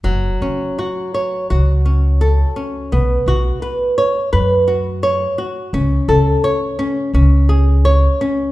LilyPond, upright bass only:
\new Staff \with { instrumentName = "Upright bass" } { \clef bass \time 4/4 \key fis \minor \tempo 4 = 85 fis,,8 fis,,8 r4 cis,2 | b,,8 b,,8 r4 fis,2 | cis,8 cis,8 r4 cis,2 | }